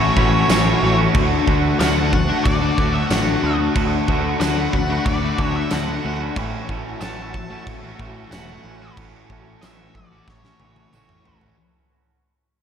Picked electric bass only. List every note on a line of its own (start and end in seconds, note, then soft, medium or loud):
0.17 0.42 A1 medium
0.49 0.73 A1 loud
0.81 1.06 A1 medium
1.15 1.39 D2 loud
1.47 1.72 D2 loud
1.80 2.29 D2 medium
2.46 2.70 D2 loud
2.78 3.02 D2 loud
3.11 3.35 A1 loud
3.43 3.68 D2 medium
3.76 4.00 D2 loud
4.08 4.33 D2 loud
4.40 4.65 D2 loud
4.74 4.98 D2 loud
5.06 5.31 D2 loud
5.39 5.63 D2 loud
5.73 5.97 D2 loud
6.05 6.29 D2 medium
6.37 6.61 A1 loud
6.69 6.94 A1 loud
7.01 7.51 A1 loud
7.67 7.91 A1 medium
7.99 8.24 A1 loud
8.31 8.56 E1 loud
8.64 8.89 A1 medium
8.97 9.22 A1 loud
9.30 9.54 A1 loud
9.63 9.87 A1 loud
9.95 10.19 A1 loud
10.28 10.52 A1 loud
10.60 10.85 A1 loud
10.93 11.17 A1 loud
11.25 11.50 A1 medium